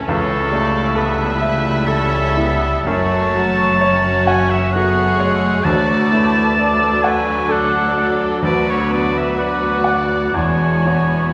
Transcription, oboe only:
X:1
M:3/4
L:1/16
Q:1/4=65
K:Amix
V:1 name="Oboe"
A4 B4 A4 | [K:F#m] a6 g e f4 | a6 g2 f3 z | d c d e f4 g4 |]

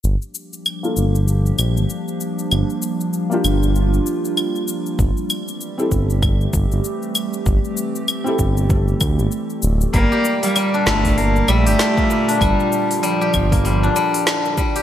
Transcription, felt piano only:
X:1
M:4/4
L:1/16
Q:"Swing 16ths" 1/4=97
K:Gdor
V:1 name="Felt piano"
z4 z [B,DFA]2 z8 z | z4 z [B,DFG]8- [B,DFG]3 | z4 z [CEGA]2 z8 z | z4 z [CEGA]8- [CEGA]3 |
z16 | z16 |]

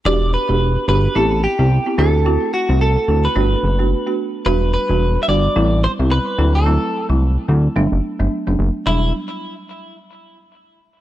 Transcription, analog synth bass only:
X:1
M:4/4
L:1/16
Q:"Swing 16ths" 1/4=109
K:Em
V:1 name="Analog synth bass" clef=bass
E,,,3 E,,,3 G,,,2 A,,,3 C,,2 z D,,2- | D,,2 z C,,3 D,,2 G,,,2 F,,,3 z3 | E,,,3 E,,,3 G,,,2 A,,,3 C,,2 z D,,2- | D,,2 z C,,3 D,,2 G,,, F,,, z G,,, z F,,, F,,, z |
E,,,2 z12 z2 |]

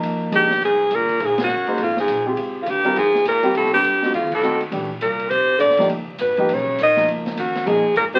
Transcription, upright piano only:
X:1
M:4/4
L:1/8
Q:"Swing" 1/4=204
K:Fm
V:1 name="Upright piano"
[F,B,EB]2 [F,B,EA] z4 z | z3 [B,EAc] z3 [CFGA]- | [CFGA]2 z [G,CFB] z3 [G,CFG]- | [G,CFG]2 z [=A,CE_G] z2 [A,CEG] z |
[=E,=A,=DG] z6 [F,B,_EG] | z3 [F,B,EG] z3 [F,B,EB]- | [F,B,EB]2 z2 [F,B,EA] z2 [G,CFG] |]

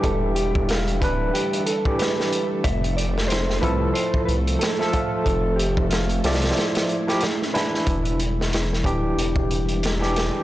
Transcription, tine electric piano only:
X:1
M:4/4
L:1/16
Q:"Swing 16ths" 1/4=92
K:Ephr
V:1 name="Tine electric piano"
[E,DG]6 [E,DB]4- [E,DB] [E,DG]4- [E,DG] | z6 [F,EA]6- [F,EA] [F,Ae]3- | [F,Ae]6 [F,de]4- [F,de] [F,EG] z2 [E,DE]2- | [E,DE]2 z4 [E,DG]6- [E,DG] [E,DG]3 |]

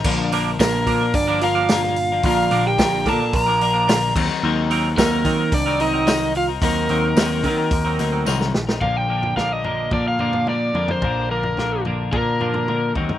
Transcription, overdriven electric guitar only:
X:1
M:4/4
L:1/16
Q:1/4=110
K:Bb
V:1 name="Overdriven electric guitar"
z4 B4 d2 f6 | f3 g3 a2 b6 z2 | z4 B4 d2 e4 f2 | B12 z4 |
f g3 f e3 d f3 d3 c- | c2 B4 z2 B6 z2 |]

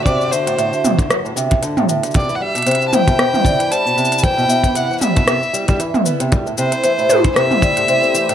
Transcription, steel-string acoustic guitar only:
X:1
M:4/4
L:1/16
Q:"Swing 16ths" 1/4=115
K:Clyd
V:1 name="Steel-string acoustic guitar" clef=bass
C,2 D, A,, A,, D, C, D, F, A,, C,2 D, A,, A,, D, | C, E, G, B,, C,2 E, B,, B,, E, C, E, G, B,, C,2 | E, B,, B,, E, C, E, G, B,, C, z G, G, E, z B, C, | G, A,, C, C E, A,, A,, E, C, E, G, A,, C, C E, A,, |]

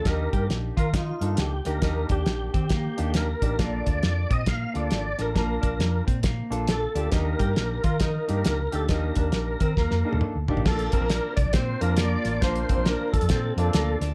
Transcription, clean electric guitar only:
X:1
M:4/4
L:1/8
Q:"Swing" 1/4=136
K:Bb
V:1 name="Clean electric guitar"
E G z F E2 z G | E D z C B,2 z D | B, D z C B,2 z D | B, D z C B,2 z D |
E G z F E2 z G | E D z C B,2 z D | B, C D2 C2 B,2 | B, C D2 C2 B, D |]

